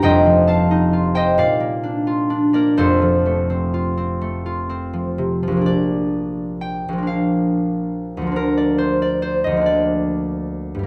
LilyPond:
<<
  \new Staff \with { instrumentName = "Harp" } { \time 6/8 \key bes \major \tempo 4. = 44 << { <ees'' g'' bes'' c''' ees'''>8 <f'' a''>8. <ees'' g''>16 <d'' f''>4~ <d'' f''>16 <bes' d''>16 | <a' c''>2. | d''4 g''8 f''4. | bes'16 d''16 c''16 d''16 c''16 ees''16 d''4. | } \\ { <f,, f, c' ees' c''>16 f16 c'16 ees'16 f'16 c''16 bes,16 bes16 d'16 f'16 d'16 bes16 | <f,, f,>16 f16 a16 c'16 f'16 c'16 a16 f'16 c'16 f16 c16 f16~ | f2.~ | f2. | } >> }
  \new Staff \with { instrumentName = "Harp" } { \clef bass \time 6/8 \key bes \major r2. | r2. | <bes,, f bes d'>4. <bes,, f bes d'>4. | <d, f bes d'>4. <d, f bes d'>4. | }
>>